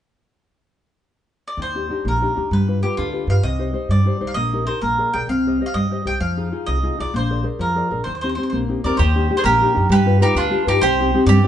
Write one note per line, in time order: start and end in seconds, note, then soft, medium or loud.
1.48 1.61 D5 medium
1.57 1.88 D#2 medium
1.57 1.90 D#3 medium
1.62 2.04 C5 medium
1.75 1.88 D4 soft
1.75 1.89 D#4 soft
1.75 1.90 G4 soft
1.89 2.15 D4 soft
1.89 2.16 D#4 soft
1.89 2.16 G4 soft
2.05 2.26 A#1 medium
2.05 2.36 A#3 medium
2.05 2.50 A#4 medium
2.22 2.35 D4 soft
2.22 2.35 D#4 soft
2.22 2.36 G4 soft
2.36 2.46 D2 medium
2.36 2.48 D4 soft
2.36 2.49 D#4 soft
2.36 2.49 G4 soft
2.51 2.81 G2 medium
2.51 2.82 G3 medium
2.51 2.85 B4 medium
2.68 2.83 F4 soft
2.68 2.82 G4 soft
2.68 2.83 B4 soft
2.83 3.08 F4 soft
2.83 2.96 G4 medium
2.83 3.08 G4 soft
2.83 3.09 B4 soft
2.97 3.18 D2 medium
2.97 3.28 D3 medium
2.97 3.26 F4 medium
3.13 3.28 F4 soft
3.13 3.29 G4 soft
3.13 3.28 B4 soft
3.27 3.37 G2 medium
3.27 3.41 F4 soft
3.27 3.41 G4 soft
3.27 3.41 B4 soft
3.27 3.43 F5 medium
3.43 3.73 C2 medium
3.43 3.74 C3 medium
3.43 3.90 D#5 medium
3.59 3.72 D#4 soft
3.59 3.72 G4 soft
3.59 3.72 C5 soft
3.73 3.99 D#4 soft
3.73 3.99 G4 soft
3.73 3.99 C5 soft
3.89 4.10 G2 medium
3.89 4.20 G3 medium
3.89 4.27 D5 medium
4.05 4.19 D#4 soft
4.05 4.19 G4 soft
4.05 4.19 C5 soft
4.20 4.31 C2 medium
4.20 4.33 D#4 soft
4.20 4.32 G4 soft
4.20 4.33 C5 soft
4.27 4.35 F5 medium
4.34 4.66 A#1 medium
4.34 4.67 A#3 medium
4.34 4.64 D#5 medium
4.53 4.65 D#4 soft
4.53 4.66 G4 soft
4.53 4.67 A#4 soft
4.67 4.79 D#4 soft
4.67 4.79 G4 soft
4.67 4.80 A#4 soft
4.67 4.81 C5 medium
4.81 5.03 A#1 medium
4.81 5.13 A#3 medium
4.81 5.15 A#4 medium
4.98 5.12 G#4 soft
4.98 5.13 A#4 soft
4.98 5.13 D5 soft
5.13 5.24 B1 medium
5.13 5.26 G#4 soft
5.13 5.26 A#4 soft
5.13 5.26 D5 soft
5.13 5.29 G5 medium
5.28 5.58 C2 medium
5.28 5.60 C4 medium
5.28 5.65 F5 medium
5.46 5.60 G4 soft
5.46 5.60 C5 soft
5.46 5.60 D#5 soft
5.61 5.86 G4 soft
5.61 5.86 C5 soft
5.61 5.86 D#5 soft
5.66 5.74 F5 medium
5.74 5.95 G2 medium
5.74 6.06 G3 medium
5.74 6.04 D#5 medium
5.91 6.04 G4 soft
5.91 6.04 C5 soft
5.91 6.05 D#5 soft
6.05 6.15 C2 medium
6.05 6.18 G4 soft
6.05 6.18 C5 soft
6.05 6.18 D#5 soft
6.05 6.20 G5 medium
6.20 6.51 F2 medium
6.20 6.51 F3 medium
6.20 6.68 F5 medium
6.37 6.51 D#4 soft
6.37 6.51 F4 soft
6.37 6.52 G#4 soft
6.52 6.78 D#4 soft
6.52 6.77 F4 soft
6.52 6.78 G#4 soft
6.66 6.88 C2 medium
6.66 6.97 C3 medium
6.66 6.99 D#5 medium
6.83 6.97 D#4 soft
6.83 6.98 F4 soft
6.83 6.98 G#4 soft
6.98 7.09 C2 medium
6.98 7.10 D#4 soft
6.98 7.11 F4 soft
6.98 7.11 G#4 soft
6.98 7.13 D5 medium
7.14 7.44 A#1 medium
7.14 7.44 A#3 medium
7.14 7.44 C5 medium
7.30 7.42 G#4 soft
7.30 7.43 A#4 soft
7.30 7.43 D5 soft
7.43 7.69 G#4 soft
7.43 7.69 A#4 soft
7.43 7.70 D5 soft
7.59 7.80 F2 medium
7.59 7.90 F3 medium
7.59 8.03 A#4 medium
7.75 7.90 G#4 soft
7.75 7.90 A#4 soft
7.75 7.91 D5 soft
7.91 8.00 A#1 medium
7.91 8.03 G#4 soft
7.91 8.03 A#4 soft
7.91 8.03 D5 soft
8.04 8.36 D#2 medium
8.04 8.36 D#3 medium
8.04 8.12 C5 medium
8.15 8.20 C5 soft
8.21 8.37 C4 soft
8.21 8.36 D#4 soft
8.21 8.37 G4 soft
8.21 8.28 C5 medium
8.29 8.34 C5 medium
8.35 8.63 C4 soft
8.35 8.63 D#4 soft
8.35 8.63 G4 soft
8.35 8.42 C5 medium
8.43 8.49 C5 soft
8.50 8.73 A#1 medium
8.50 8.83 A#3 medium
8.50 8.58 C5 medium
8.69 8.83 C4 soft
8.69 8.83 D#4 soft
8.69 8.84 G4 soft
8.84 8.93 D#2 medium
8.84 8.96 C4 soft
8.84 8.96 D#4 soft
8.84 8.96 G4 soft
8.84 8.98 A#4 medium
8.84 8.97 D5 medium
8.97 9.29 D#2 loud
8.97 9.29 D#3 medium
8.97 9.35 G4 medium
8.97 9.34 C5 medium
9.15 9.29 D4 soft
9.15 9.29 D#4 soft
9.15 9.29 G4 soft
9.30 9.55 D4 soft
9.30 9.55 D#4 soft
9.30 9.55 G4 medium
9.37 9.44 G#4 medium
9.37 9.43 C5 medium
9.44 9.65 A#1 medium
9.44 9.75 A#3 medium
9.44 9.88 G4 medium
9.44 9.87 A#4 medium
9.61 9.73 D4 soft
9.61 9.74 D#4 soft
9.61 9.74 G4 medium
9.74 9.86 F#2 medium
9.74 9.86 D4 soft
9.74 9.87 D#4 soft
9.74 9.87 G4 medium
9.89 10.19 G2 loud
9.89 10.20 G3 medium
9.89 10.20 G4 medium
9.89 10.20 B4 medium
10.06 10.19 F4 soft
10.06 10.19 G4 soft
10.06 10.20 B4 medium
10.21 10.35 D#4 medium
10.21 10.45 F4 medium
10.21 10.45 G4 soft
10.21 10.37 G4 medium
10.21 10.46 B4 medium
10.35 10.55 D2 medium
10.35 10.66 D3 medium
10.35 10.65 D4 medium
10.35 10.65 F4 medium
10.50 10.66 F4 medium
10.50 10.66 G4 soft
10.50 10.66 B4 medium
10.67 10.76 G2 medium
10.67 10.81 D#4 medium
10.67 10.78 F4 soft
10.67 10.79 G4 soft
10.67 10.81 G4 medium
10.67 10.78 B4 medium
10.81 11.11 C2 loud
10.81 11.12 C3 medium
10.81 11.24 G4 medium
10.81 11.24 C5 loud
11.00 11.13 C4 soft
11.00 11.13 D#4 soft
11.00 11.14 G4 medium
11.14 11.38 C4 medium
11.14 11.38 D#4 soft
11.14 11.39 G4 medium
11.26 11.47 G2 loud
11.26 11.47 G3 medium
11.26 11.47 G4 medium
11.26 11.47 D5 medium
11.43 11.47 C4 soft
11.43 11.47 D#4 soft
11.43 11.47 G4 medium